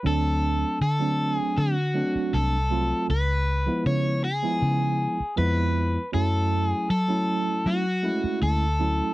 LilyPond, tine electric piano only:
\new Staff \with { instrumentName = "Tine electric piano" } { \time 4/4 \key d \lydian \tempo 4 = 79 <fis a c' d'>4 r16 <fis a c' d'>4 r16 <fis a c' d'>8. r16 <fis a c' eis'>8 | r8. <eis gis b e'>8. r16 <eis gis b e'>4 r16 <eis gis b e'>8. r16 | <fis a cis' e'>4 r16 <fis a cis' e'>4 r16 <gis a cis' e'>8. r16 <fis a cis' e'>8 | }